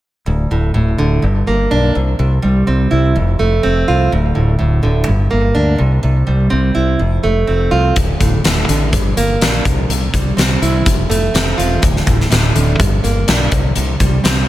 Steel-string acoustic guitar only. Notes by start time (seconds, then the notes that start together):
0.26 D2
0.51 A2
0.74 A2
0.98 D3
1.22 G2
1.47 A#3
1.71 D4
1.95 C3
2.19 C3
2.42 G3
2.67 C4
2.91 E4
3.16 F2
3.39 A3
3.63 C4
3.88 F4
4.12 D2
4.35 A2
4.59 A2
4.83 D3
5.06 G2
5.31 A#3
5.55 D4
5.78 C3
6.03 C3
6.27 G3
6.50 C4
6.75 E4
6.99 F2
7.24 A3
7.47 C4
7.71 F4
7.96 D2
8.20 A2
8.45 A2
8.69 D3
8.92 G2
9.17 A#3
9.41 D4
9.66 C3
9.90 C3
10.14 G3
10.37 C4
10.62 E4
10.86 F2
11.10 A3
11.34 C4
11.58 F4
11.82 D2
12.06 A2
12.31 A2
12.56 D3
12.79 G2
13.04 A#3
13.28 D4
13.52 C3
13.76 C3
14.00 G3
14.24 C4